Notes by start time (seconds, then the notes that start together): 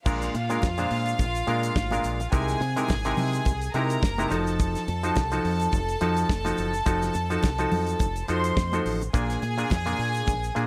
0.06 A#1 A#2 G#3 D4 F4 A#4 F5, kick, crash, shaker
0.22 snare, closed hi-hat, shaker
0.34 A#2, closed hi-hat, muted conga
0.50 A#2 G#3 D4 A#4, closed hi-hat, shaker
0.62 F2, kick, snare, high conga, shaker
0.78 A#2 G#3 D4 C5, closed hi-hat, shaker
0.91 A#2, open hi-hat
1.06 closed hi-hat, shaker
1.18 A#1, kick, closed hi-hat, muted conga, shaker
1.35 closed hi-hat, shaker
1.47 A#2 G#3 D4 A#4, closed hi-hat
1.63 closed hi-hat, shaker
1.76 G#1, kick, snare, high conga, shaker
1.91 A#2 G#3 D4 A#4, closed hi-hat, high conga, shaker
2.04 A#1, closed hi-hat, shaker
2.20 closed hi-hat, shaker
2.32 C2 C3 G#3 D#4 E4 G#4 A#4 G#5, kick, closed hi-hat, shaker
2.48 snare, closed hi-hat, shaker
2.61 C3, closed hi-hat, muted conga
2.76 C3 G#3 D#4 E4 A#4, closed hi-hat, shaker
2.88 G#1, kick, snare, high conga, shaker
3.05 C3 G#3 D#4 E4 A#4, closed hi-hat, shaker
3.17 C3, open hi-hat, low conga
3.33 closed hi-hat, shaker
3.45 C2, kick, closed hi-hat, muted conga, shaker
3.61 closed hi-hat, shaker
3.74 C3 G#3 D#4 E4 A#4 A#5, closed hi-hat, muted conga
3.90 closed hi-hat, shaker
4.03 F#1, kick, snare, high conga, shaker
4.18 C3 G#3 D#4 E4 A#4, closed hi-hat, high conga, shaker
4.30 F1 F3 D#4 F#4 A4 A5, closed hi-hat, shaker
4.47 closed hi-hat, shaker
4.60 kick, closed hi-hat, shaker
4.75 snare, closed hi-hat, shaker
4.88 F2, closed hi-hat, muted conga
5.03 F3 D#4 F#4 C5, closed hi-hat, shaker
5.16 C2, kick, snare, high conga, shaker
5.31 F3 D#4 F#4 A4, closed hi-hat, shaker
5.45 F2, open hi-hat
5.60 closed hi-hat, shaker
5.72 F1, kick, closed hi-hat, muted conga, shaker
5.88 closed hi-hat, shaker
6.01 F2 F3 D#4 F#4 A4, closed hi-hat, muted conga
6.17 closed hi-hat, shaker
6.29 F1, kick, snare, high conga, shaker
6.45 F3 D#4 F#4 A4, closed hi-hat, high conga, shaker
6.57 F#1, closed hi-hat, shaker
6.74 closed hi-hat, shaker
6.86 F1 F3 D#4 F#4 A4, kick, closed hi-hat, shaker
7.02 snare, closed hi-hat, shaker
7.14 F2, closed hi-hat, muted conga, shaker
7.30 F3 D#4 F#4 A4, closed hi-hat, shaker
7.43 C2, kick, snare, high conga, shaker
7.58 F3 D#4 F#4 A4, closed hi-hat, shaker
7.72 F2, open hi-hat, low conga
7.87 closed hi-hat, shaker
7.99 F1, kick, closed hi-hat, muted conga, shaker
8.16 closed hi-hat, shaker
8.28 F2 F3 D#4 F#4 A4 C5 C6, closed hi-hat, muted conga, shaker
8.44 closed hi-hat, shaker
8.57 F2, kick, snare, high conga, shaker
8.72 F3 D#4 F#4 A4, closed hi-hat, high conga, shaker
8.86 A1, open hi-hat
9.01 closed hi-hat, shaker
9.13 A#1 A#2 A#3 D4 G#4 G#5, kick, closed hi-hat, shaker
9.30 snare, closed hi-hat, shaker
9.42 A#2, closed hi-hat, muted conga
9.58 A#2 A#3 D4 G#4, closed hi-hat, shaker
9.70 F2, kick, snare, high conga, shaker
9.86 A#2 A#3 D4 G#4, closed hi-hat, shaker
9.99 A#2, open hi-hat
10.15 closed hi-hat, shaker
10.27 A#1, kick, closed hi-hat, muted conga, shaker
10.44 closed hi-hat, shaker
10.55 A#2 A#3 D4 G#4, closed hi-hat